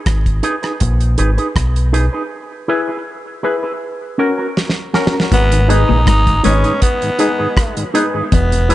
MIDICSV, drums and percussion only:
0, 0, Header, 1, 2, 480
1, 0, Start_track
1, 0, Key_signature, 5, "minor"
1, 0, Tempo, 751033
1, 1479, Time_signature, 4, 2, 24, 8
1, 5590, End_track
2, 0, Start_track
2, 0, Title_t, "Drums"
2, 39, Note_on_c, 9, 36, 98
2, 39, Note_on_c, 9, 42, 91
2, 43, Note_on_c, 9, 37, 102
2, 103, Note_off_c, 9, 36, 0
2, 103, Note_off_c, 9, 42, 0
2, 107, Note_off_c, 9, 37, 0
2, 167, Note_on_c, 9, 36, 78
2, 168, Note_on_c, 9, 42, 41
2, 230, Note_off_c, 9, 36, 0
2, 232, Note_off_c, 9, 42, 0
2, 276, Note_on_c, 9, 42, 73
2, 340, Note_off_c, 9, 42, 0
2, 403, Note_on_c, 9, 42, 31
2, 409, Note_on_c, 9, 37, 62
2, 467, Note_off_c, 9, 42, 0
2, 473, Note_off_c, 9, 37, 0
2, 513, Note_on_c, 9, 42, 90
2, 518, Note_on_c, 9, 36, 102
2, 577, Note_off_c, 9, 42, 0
2, 582, Note_off_c, 9, 36, 0
2, 642, Note_on_c, 9, 42, 44
2, 706, Note_off_c, 9, 42, 0
2, 753, Note_on_c, 9, 42, 69
2, 817, Note_off_c, 9, 42, 0
2, 882, Note_on_c, 9, 42, 32
2, 946, Note_off_c, 9, 42, 0
2, 995, Note_on_c, 9, 36, 99
2, 999, Note_on_c, 9, 37, 109
2, 1000, Note_on_c, 9, 42, 93
2, 1059, Note_off_c, 9, 36, 0
2, 1063, Note_off_c, 9, 37, 0
2, 1064, Note_off_c, 9, 42, 0
2, 1125, Note_on_c, 9, 42, 50
2, 1189, Note_off_c, 9, 42, 0
2, 1240, Note_on_c, 9, 42, 74
2, 1304, Note_off_c, 9, 42, 0
2, 2922, Note_on_c, 9, 38, 52
2, 2986, Note_off_c, 9, 38, 0
2, 3001, Note_on_c, 9, 38, 54
2, 3065, Note_off_c, 9, 38, 0
2, 3159, Note_on_c, 9, 38, 72
2, 3223, Note_off_c, 9, 38, 0
2, 3241, Note_on_c, 9, 38, 91
2, 3305, Note_off_c, 9, 38, 0
2, 3322, Note_on_c, 9, 38, 79
2, 3386, Note_off_c, 9, 38, 0
2, 3398, Note_on_c, 9, 36, 113
2, 3399, Note_on_c, 9, 42, 97
2, 3462, Note_off_c, 9, 36, 0
2, 3463, Note_off_c, 9, 42, 0
2, 3526, Note_on_c, 9, 42, 60
2, 3590, Note_off_c, 9, 42, 0
2, 3643, Note_on_c, 9, 42, 70
2, 3707, Note_off_c, 9, 42, 0
2, 3879, Note_on_c, 9, 42, 96
2, 3880, Note_on_c, 9, 36, 116
2, 3883, Note_on_c, 9, 37, 104
2, 3943, Note_off_c, 9, 42, 0
2, 3944, Note_off_c, 9, 36, 0
2, 3947, Note_off_c, 9, 37, 0
2, 4007, Note_on_c, 9, 36, 90
2, 4007, Note_on_c, 9, 42, 43
2, 4071, Note_off_c, 9, 36, 0
2, 4071, Note_off_c, 9, 42, 0
2, 4116, Note_on_c, 9, 42, 89
2, 4180, Note_off_c, 9, 42, 0
2, 4244, Note_on_c, 9, 42, 33
2, 4307, Note_off_c, 9, 42, 0
2, 4357, Note_on_c, 9, 42, 102
2, 4360, Note_on_c, 9, 36, 103
2, 4421, Note_off_c, 9, 42, 0
2, 4424, Note_off_c, 9, 36, 0
2, 4485, Note_on_c, 9, 42, 44
2, 4549, Note_off_c, 9, 42, 0
2, 4594, Note_on_c, 9, 42, 80
2, 4658, Note_off_c, 9, 42, 0
2, 4836, Note_on_c, 9, 36, 109
2, 4840, Note_on_c, 9, 37, 118
2, 4841, Note_on_c, 9, 42, 96
2, 4900, Note_off_c, 9, 36, 0
2, 4904, Note_off_c, 9, 37, 0
2, 4905, Note_off_c, 9, 42, 0
2, 4964, Note_on_c, 9, 42, 53
2, 5028, Note_off_c, 9, 42, 0
2, 5080, Note_on_c, 9, 42, 87
2, 5144, Note_off_c, 9, 42, 0
2, 5318, Note_on_c, 9, 42, 101
2, 5319, Note_on_c, 9, 36, 123
2, 5382, Note_off_c, 9, 42, 0
2, 5383, Note_off_c, 9, 36, 0
2, 5447, Note_on_c, 9, 42, 60
2, 5510, Note_off_c, 9, 42, 0
2, 5560, Note_on_c, 9, 42, 73
2, 5590, Note_off_c, 9, 42, 0
2, 5590, End_track
0, 0, End_of_file